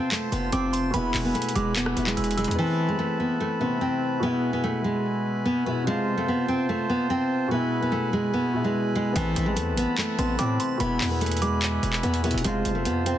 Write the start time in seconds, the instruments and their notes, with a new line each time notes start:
Already playing: grand piano C3 C4 F4, harmonium F4 C5 A5 C6
0.11 nylon-string guitar A3, clap, closed hi-hat
0.32 808-style bass F1, nylon-string guitar B3, synth bell C6, closed hi-hat
0.52 808-style bass F1, nylon-string guitar C4, synth bell D6, closed hi-hat
0.73 synth bell C6, closed hi-hat
0.91 808-style bass E1, grand piano B2 G#3, nylon-string guitar B3, harmonium E4 B4 G#5 B5, synth bell B5, closed hi-hat
0.96 grand piano E4
1.14 808-style bass E1, clap, open hi-hat
1.25 nylon-string guitar B3
1.34 nylon-string guitar A3, closed hi-hat
1.42 closed hi-hat
1.49 closed hi-hat
1.55 808-style bass E1, nylon-string guitar G#3, synth bell D6, closed hi-hat
1.76 nylon-string guitar B3, clap, closed hi-hat
1.86 cross-stick
1.96 808-style bass E1, grand piano B2 G#3 E4, closed hi-hat
2.07 nylon-string guitar G#3, clap
2.17 808-style bass E1, synth bell E6, closed hi-hat
2.24 closed hi-hat
2.31 closed hi-hat
2.37 808-style bass F1, nylon-string guitar G#3, synth bell E6, closed hi-hat
2.44 808-style bass E2, closed hi-hat
2.51 grand piano B3, closed hi-hat
2.58 nylon-string guitar E3, grand piano A3 C4, harmonium E4 B4 A5 B5
2.88 nylon-string guitar G#3
2.99 nylon-string guitar A3
3.20 nylon-string guitar B3
3.40 nylon-string guitar A3
3.60 grand piano C3 A3 C4, nylon-string guitar B3
3.81 nylon-string guitar C4
4.20 grand piano B2 G#3, nylon-string guitar B3, harmonium B4 G#5
4.25 grand piano E4
4.53 nylon-string guitar B3
4.64 nylon-string guitar A3
4.84 nylon-string guitar G#3
5.45 nylon-string guitar B3
5.66 grand piano B2 G#3 E4, nylon-string guitar B3
5.84 grand piano C3 C4, nylon-string guitar G#3, harmonium F4 C5 A5 C6
5.90 grand piano F4
6.18 nylon-string guitar A3
6.28 nylon-string guitar B3
6.48 nylon-string guitar C4
6.69 nylon-string guitar A3
6.90 nylon-string guitar B3
7.10 nylon-string guitar C4
7.48 grand piano B2 G#3, nylon-string guitar B3, harmonium E4 B4 G#5 B5
7.54 grand piano E4
7.82 nylon-string guitar B3
7.92 nylon-string guitar A3
8.13 nylon-string guitar G#3
8.34 nylon-string guitar B3
8.54 grand piano B2 G#3 E4
8.64 nylon-string guitar G#3
8.95 nylon-string guitar G#3
9.13 808-style bass A1, nylon-string guitar E3, grand piano A3 B3, harmonium E4 B4 A5 B5, closed hi-hat
9.18 grand piano C4
9.36 808-style bass A1, closed hi-hat
9.46 nylon-string guitar G#3
9.56 808-style bass E2, nylon-string guitar A3, closed hi-hat
9.72 808-style bass A1
9.77 nylon-string guitar B3, closed hi-hat
9.98 nylon-string guitar A3, clap, closed hi-hat
10.17 808-style bass A1, grand piano C3 A3 C4, nylon-string guitar B3, synth bell C6, closed hi-hat
10.39 808-style bass A2, nylon-string guitar C4, synth bell D6, closed hi-hat
10.60 synth bell C6, closed hi-hat
10.78 808-style bass E1, grand piano B2 G#3, nylon-string guitar B3, harmonium B4 G#5 B5, synth bell B5, closed hi-hat
10.83 grand piano E4
11.01 808-style bass E2, clap, open hi-hat
11.11 nylon-string guitar B3
11.21 nylon-string guitar A3, closed hi-hat
11.26 closed hi-hat
11.31 closed hi-hat
11.37 closed hi-hat
11.42 nylon-string guitar G#3, synth bell D6, closed hi-hat
11.62 clap, closed hi-hat
11.83 808-style bass E1, closed hi-hat
11.93 clap
12.03 808-style bass E2, nylon-string guitar B3, closed hi-hat
12.14 closed hi-hat
12.23 grand piano B2 G#3 E4, nylon-string guitar B3, closed hi-hat
12.31 808-style bass E1, closed hi-hat
12.38 grand piano C3, closed hi-hat
12.44 808-style bass F1, nylon-string guitar G#3, grand piano C4 F4, harmonium F4 C5 A5 C6, closed hi-hat
12.65 808-style bass F1, closed hi-hat
12.75 nylon-string guitar A3
12.85 808-style bass F2, nylon-string guitar B3, closed hi-hat
13.06 nylon-string guitar C4, closed hi-hat